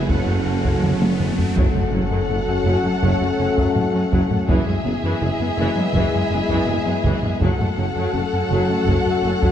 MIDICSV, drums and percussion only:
0, 0, Header, 1, 2, 480
1, 0, Start_track
1, 0, Key_signature, 3, "minor"
1, 0, Tempo, 731707
1, 1023, Time_signature, 4, 2, 24, 8
1, 6243, End_track
2, 0, Start_track
2, 0, Title_t, "Taiko and cinematic ensemble drums"
2, 61, Note_on_c, 9, 41, 74
2, 126, Note_off_c, 9, 41, 0
2, 422, Note_on_c, 9, 41, 79
2, 488, Note_off_c, 9, 41, 0
2, 545, Note_on_c, 9, 47, 78
2, 610, Note_off_c, 9, 47, 0
2, 668, Note_on_c, 9, 48, 86
2, 733, Note_off_c, 9, 48, 0
2, 787, Note_on_c, 9, 47, 87
2, 853, Note_off_c, 9, 47, 0
2, 908, Note_on_c, 9, 43, 81
2, 973, Note_off_c, 9, 43, 0
2, 1027, Note_on_c, 9, 41, 96
2, 1093, Note_off_c, 9, 41, 0
2, 1148, Note_on_c, 9, 45, 52
2, 1213, Note_off_c, 9, 45, 0
2, 1986, Note_on_c, 9, 41, 78
2, 2052, Note_off_c, 9, 41, 0
2, 2348, Note_on_c, 9, 41, 86
2, 2413, Note_off_c, 9, 41, 0
2, 2467, Note_on_c, 9, 45, 56
2, 2533, Note_off_c, 9, 45, 0
2, 2705, Note_on_c, 9, 41, 84
2, 2770, Note_off_c, 9, 41, 0
2, 2826, Note_on_c, 9, 45, 52
2, 2891, Note_off_c, 9, 45, 0
2, 2945, Note_on_c, 9, 41, 100
2, 3011, Note_off_c, 9, 41, 0
2, 3066, Note_on_c, 9, 45, 51
2, 3132, Note_off_c, 9, 45, 0
2, 3903, Note_on_c, 9, 41, 82
2, 3969, Note_off_c, 9, 41, 0
2, 4261, Note_on_c, 9, 41, 88
2, 4327, Note_off_c, 9, 41, 0
2, 4381, Note_on_c, 9, 45, 58
2, 4446, Note_off_c, 9, 45, 0
2, 4619, Note_on_c, 9, 41, 84
2, 4685, Note_off_c, 9, 41, 0
2, 4741, Note_on_c, 9, 45, 49
2, 4807, Note_off_c, 9, 45, 0
2, 4862, Note_on_c, 9, 41, 96
2, 4928, Note_off_c, 9, 41, 0
2, 4984, Note_on_c, 9, 45, 51
2, 5049, Note_off_c, 9, 45, 0
2, 5820, Note_on_c, 9, 41, 80
2, 5886, Note_off_c, 9, 41, 0
2, 6180, Note_on_c, 9, 41, 87
2, 6243, Note_off_c, 9, 41, 0
2, 6243, End_track
0, 0, End_of_file